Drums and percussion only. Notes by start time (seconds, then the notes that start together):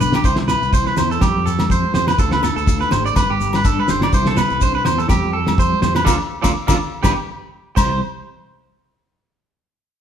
0.01 low conga, shekere
0.12 snare, low conga, low agogo, shekere
0.24 kick, shekere
0.36 snare
0.48 snare, low agogo, shekere
0.62 shekere
0.72 kick, snare, shekere
0.86 snare
0.97 snare, low conga, low agogo, shekere
1.12 shekere
1.21 kick, snare, high conga, low agogo, shekere
1.36 high conga
1.47 shekere
1.59 snare, high conga, low conga, low agogo, shekere
1.70 kick, shekere
1.84 high conga
1.94 snare, high conga, low conga, shekere
2.08 snare, low agogo, shekere
2.19 kick, shekere
2.31 snare
2.43 snare, low agogo, shekere
2.58 shekere
2.66 kick, snare, shekere
2.81 snare
2.91 snare, low conga, low agogo, shekere
3.06 shekere
3.16 kick, snare, high conga, low agogo, shekere
3.30 high conga
3.41 shekere
3.53 snare, high conga, low conga, low agogo, shekere
3.65 kick, shekere
3.79 high conga
3.88 snare, high conga, low conga, shekere
4.01 snare, low agogo
4.13 kick, shekere
4.26 snare
4.37 snare, low agogo, shekere
4.50 shekere
4.61 kick, snare, shekere
4.85 snare, low conga, low agogo, shekere
4.99 shekere
5.09 kick, snare, high conga, low agogo, shekere
5.24 high conga
5.47 snare, high conga, low conga, low agogo, shekere
5.58 kick, shekere
5.73 high conga
5.82 snare, high conga, low conga, shekere
5.95 snare, low agogo, shekere
6.06 kick, snare, low conga, low agogo, shekere
6.44 kick, snare, low conga, low agogo, shekere
6.68 kick, snare, low conga, low agogo, shekere
7.04 kick, snare, low conga, low agogo, shekere
7.77 kick, crash, high conga, low agogo, shekere